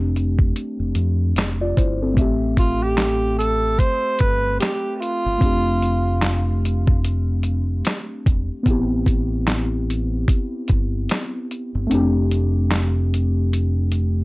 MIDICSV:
0, 0, Header, 1, 5, 480
1, 0, Start_track
1, 0, Tempo, 810811
1, 1285, Time_signature, 4, 2, 24, 8
1, 8431, End_track
2, 0, Start_track
2, 0, Title_t, "Tenor saxophone"
2, 0, Program_c, 0, 66
2, 1532, Note_on_c, 0, 65, 80
2, 1675, Note_on_c, 0, 67, 94
2, 1683, Note_off_c, 0, 65, 0
2, 2001, Note_off_c, 0, 67, 0
2, 2005, Note_on_c, 0, 69, 89
2, 2243, Note_on_c, 0, 72, 110
2, 2252, Note_off_c, 0, 69, 0
2, 2484, Note_on_c, 0, 71, 94
2, 2493, Note_off_c, 0, 72, 0
2, 2718, Note_off_c, 0, 71, 0
2, 2721, Note_on_c, 0, 67, 91
2, 2941, Note_off_c, 0, 67, 0
2, 2941, Note_on_c, 0, 67, 63
2, 2965, Note_on_c, 0, 65, 95
2, 2974, Note_off_c, 0, 67, 0
2, 3925, Note_off_c, 0, 65, 0
2, 8431, End_track
3, 0, Start_track
3, 0, Title_t, "Synth keys"
3, 0, Program_c, 1, 88
3, 0, Control_c, 1, 64, 127
3, 0, Note_on_c, 1, 57, 69
3, 0, Note_on_c, 1, 60, 70
3, 0, Note_on_c, 1, 62, 68
3, 0, Note_on_c, 1, 67, 80
3, 538, Note_off_c, 1, 60, 0
3, 545, Note_off_c, 1, 62, 0
3, 553, Note_off_c, 1, 67, 0
3, 955, Note_on_c, 1, 74, 61
3, 956, Note_on_c, 1, 65, 53
3, 1042, Note_off_c, 1, 65, 0
3, 1042, Note_off_c, 1, 74, 0
3, 1052, Note_on_c, 1, 72, 68
3, 1054, Note_on_c, 1, 64, 55
3, 1187, Note_off_c, 1, 72, 0
3, 1188, Note_off_c, 1, 64, 0
3, 1196, Note_on_c, 1, 69, 59
3, 1200, Note_on_c, 1, 60, 54
3, 1250, Note_off_c, 1, 57, 0
3, 1265, Note_on_c, 1, 57, 69
3, 1271, Note_off_c, 1, 60, 0
3, 1278, Note_on_c, 1, 60, 61
3, 1292, Control_c, 1, 64, 0
3, 1294, Note_on_c, 1, 76, 64
3, 1309, Note_on_c, 1, 67, 78
3, 1408, Control_c, 1, 64, 127
3, 1421, Note_off_c, 1, 69, 0
3, 3171, Note_off_c, 1, 57, 0
3, 3177, Note_off_c, 1, 60, 0
3, 3185, Note_on_c, 1, 57, 57
3, 3186, Note_off_c, 1, 76, 0
3, 3193, Note_off_c, 1, 67, 0
3, 3199, Note_on_c, 1, 60, 59
3, 3211, Control_c, 1, 64, 0
3, 3213, Note_on_c, 1, 62, 57
3, 3229, Note_on_c, 1, 67, 65
3, 3332, Control_c, 1, 64, 127
3, 5091, Note_off_c, 1, 57, 0
3, 5098, Note_off_c, 1, 60, 0
3, 5105, Note_off_c, 1, 62, 0
3, 5109, Note_on_c, 1, 59, 75
3, 5113, Note_off_c, 1, 67, 0
3, 5122, Note_on_c, 1, 60, 65
3, 5131, Control_c, 1, 64, 0
3, 5137, Note_on_c, 1, 64, 70
3, 5153, Note_on_c, 1, 67, 78
3, 5222, Control_c, 1, 64, 127
3, 7013, Note_off_c, 1, 59, 0
3, 7020, Note_off_c, 1, 60, 0
3, 7026, Note_on_c, 1, 57, 73
3, 7027, Note_off_c, 1, 64, 0
3, 7035, Note_off_c, 1, 67, 0
3, 7043, Note_on_c, 1, 60, 70
3, 7052, Control_c, 1, 64, 0
3, 7055, Note_on_c, 1, 62, 63
3, 7072, Note_on_c, 1, 67, 83
3, 7171, Control_c, 1, 64, 127
3, 8431, Note_off_c, 1, 57, 0
3, 8431, Note_off_c, 1, 60, 0
3, 8431, Note_off_c, 1, 62, 0
3, 8431, Note_off_c, 1, 67, 0
3, 8431, End_track
4, 0, Start_track
4, 0, Title_t, "Fingered electric bass"
4, 0, Program_c, 2, 33
4, 0, Note_on_c, 2, 29, 98
4, 301, Note_off_c, 2, 29, 0
4, 470, Note_on_c, 2, 29, 80
4, 556, Note_off_c, 2, 29, 0
4, 564, Note_on_c, 2, 41, 90
4, 782, Note_off_c, 2, 41, 0
4, 803, Note_on_c, 2, 29, 80
4, 1021, Note_off_c, 2, 29, 0
4, 1051, Note_on_c, 2, 31, 81
4, 1286, Note_off_c, 2, 31, 0
4, 1286, Note_on_c, 2, 33, 97
4, 2221, Note_off_c, 2, 33, 0
4, 2491, Note_on_c, 2, 31, 74
4, 2706, Note_off_c, 2, 31, 0
4, 3113, Note_on_c, 2, 31, 88
4, 3197, Note_off_c, 2, 31, 0
4, 3204, Note_on_c, 2, 29, 91
4, 4621, Note_off_c, 2, 29, 0
4, 4892, Note_on_c, 2, 28, 88
4, 5021, Note_off_c, 2, 28, 0
4, 5129, Note_on_c, 2, 33, 110
4, 6063, Note_off_c, 2, 33, 0
4, 6335, Note_on_c, 2, 31, 87
4, 6548, Note_off_c, 2, 31, 0
4, 6955, Note_on_c, 2, 31, 93
4, 7038, Note_off_c, 2, 31, 0
4, 7051, Note_on_c, 2, 29, 101
4, 8431, Note_off_c, 2, 29, 0
4, 8431, End_track
5, 0, Start_track
5, 0, Title_t, "Drums"
5, 97, Note_on_c, 9, 42, 69
5, 156, Note_off_c, 9, 42, 0
5, 229, Note_on_c, 9, 36, 95
5, 289, Note_off_c, 9, 36, 0
5, 332, Note_on_c, 9, 42, 68
5, 391, Note_off_c, 9, 42, 0
5, 563, Note_on_c, 9, 42, 63
5, 622, Note_off_c, 9, 42, 0
5, 807, Note_on_c, 9, 42, 79
5, 820, Note_on_c, 9, 38, 112
5, 821, Note_on_c, 9, 39, 91
5, 866, Note_off_c, 9, 42, 0
5, 879, Note_off_c, 9, 38, 0
5, 880, Note_off_c, 9, 39, 0
5, 1050, Note_on_c, 9, 36, 91
5, 1055, Note_on_c, 9, 42, 66
5, 1109, Note_off_c, 9, 36, 0
5, 1114, Note_off_c, 9, 42, 0
5, 1284, Note_on_c, 9, 36, 93
5, 1289, Note_on_c, 9, 42, 67
5, 1343, Note_off_c, 9, 36, 0
5, 1348, Note_off_c, 9, 42, 0
5, 1521, Note_on_c, 9, 36, 84
5, 1526, Note_on_c, 9, 42, 59
5, 1581, Note_off_c, 9, 36, 0
5, 1586, Note_off_c, 9, 42, 0
5, 1762, Note_on_c, 9, 42, 70
5, 1763, Note_on_c, 9, 38, 106
5, 1764, Note_on_c, 9, 39, 77
5, 1821, Note_off_c, 9, 42, 0
5, 1822, Note_off_c, 9, 38, 0
5, 1823, Note_off_c, 9, 39, 0
5, 2016, Note_on_c, 9, 42, 66
5, 2075, Note_off_c, 9, 42, 0
5, 2243, Note_on_c, 9, 36, 78
5, 2250, Note_on_c, 9, 42, 76
5, 2302, Note_off_c, 9, 36, 0
5, 2309, Note_off_c, 9, 42, 0
5, 2479, Note_on_c, 9, 42, 64
5, 2489, Note_on_c, 9, 36, 73
5, 2538, Note_off_c, 9, 42, 0
5, 2549, Note_off_c, 9, 36, 0
5, 2726, Note_on_c, 9, 42, 84
5, 2740, Note_on_c, 9, 38, 105
5, 2741, Note_on_c, 9, 39, 84
5, 2786, Note_off_c, 9, 42, 0
5, 2799, Note_off_c, 9, 38, 0
5, 2800, Note_off_c, 9, 39, 0
5, 2973, Note_on_c, 9, 42, 73
5, 3033, Note_off_c, 9, 42, 0
5, 3203, Note_on_c, 9, 36, 100
5, 3209, Note_on_c, 9, 42, 66
5, 3263, Note_off_c, 9, 36, 0
5, 3268, Note_off_c, 9, 42, 0
5, 3448, Note_on_c, 9, 42, 63
5, 3507, Note_off_c, 9, 42, 0
5, 3683, Note_on_c, 9, 42, 70
5, 3684, Note_on_c, 9, 38, 93
5, 3685, Note_on_c, 9, 39, 81
5, 3742, Note_off_c, 9, 42, 0
5, 3743, Note_off_c, 9, 38, 0
5, 3744, Note_off_c, 9, 39, 0
5, 3939, Note_on_c, 9, 42, 75
5, 3998, Note_off_c, 9, 42, 0
5, 4070, Note_on_c, 9, 36, 86
5, 4130, Note_off_c, 9, 36, 0
5, 4171, Note_on_c, 9, 42, 75
5, 4231, Note_off_c, 9, 42, 0
5, 4399, Note_on_c, 9, 42, 64
5, 4458, Note_off_c, 9, 42, 0
5, 4645, Note_on_c, 9, 42, 79
5, 4658, Note_on_c, 9, 38, 113
5, 4659, Note_on_c, 9, 39, 95
5, 4704, Note_off_c, 9, 42, 0
5, 4718, Note_off_c, 9, 38, 0
5, 4719, Note_off_c, 9, 39, 0
5, 4891, Note_on_c, 9, 36, 91
5, 4893, Note_on_c, 9, 42, 67
5, 4950, Note_off_c, 9, 36, 0
5, 4952, Note_off_c, 9, 42, 0
5, 5126, Note_on_c, 9, 36, 96
5, 5132, Note_on_c, 9, 42, 73
5, 5185, Note_off_c, 9, 36, 0
5, 5191, Note_off_c, 9, 42, 0
5, 5365, Note_on_c, 9, 36, 81
5, 5372, Note_on_c, 9, 42, 65
5, 5424, Note_off_c, 9, 36, 0
5, 5431, Note_off_c, 9, 42, 0
5, 5607, Note_on_c, 9, 42, 72
5, 5608, Note_on_c, 9, 38, 97
5, 5609, Note_on_c, 9, 39, 76
5, 5667, Note_off_c, 9, 42, 0
5, 5668, Note_off_c, 9, 38, 0
5, 5669, Note_off_c, 9, 39, 0
5, 5861, Note_on_c, 9, 42, 73
5, 5920, Note_off_c, 9, 42, 0
5, 6086, Note_on_c, 9, 36, 79
5, 6093, Note_on_c, 9, 42, 76
5, 6146, Note_off_c, 9, 36, 0
5, 6153, Note_off_c, 9, 42, 0
5, 6322, Note_on_c, 9, 42, 63
5, 6332, Note_on_c, 9, 36, 77
5, 6382, Note_off_c, 9, 42, 0
5, 6392, Note_off_c, 9, 36, 0
5, 6568, Note_on_c, 9, 42, 83
5, 6581, Note_on_c, 9, 38, 124
5, 6582, Note_on_c, 9, 39, 89
5, 6627, Note_off_c, 9, 42, 0
5, 6640, Note_off_c, 9, 38, 0
5, 6641, Note_off_c, 9, 39, 0
5, 6814, Note_on_c, 9, 42, 68
5, 6873, Note_off_c, 9, 42, 0
5, 7051, Note_on_c, 9, 42, 71
5, 7110, Note_off_c, 9, 42, 0
5, 7291, Note_on_c, 9, 42, 58
5, 7350, Note_off_c, 9, 42, 0
5, 7526, Note_on_c, 9, 42, 77
5, 7527, Note_on_c, 9, 38, 107
5, 7528, Note_on_c, 9, 39, 81
5, 7585, Note_off_c, 9, 42, 0
5, 7586, Note_off_c, 9, 38, 0
5, 7587, Note_off_c, 9, 39, 0
5, 7779, Note_on_c, 9, 42, 69
5, 7838, Note_off_c, 9, 42, 0
5, 8012, Note_on_c, 9, 42, 75
5, 8071, Note_off_c, 9, 42, 0
5, 8239, Note_on_c, 9, 42, 59
5, 8298, Note_off_c, 9, 42, 0
5, 8431, End_track
0, 0, End_of_file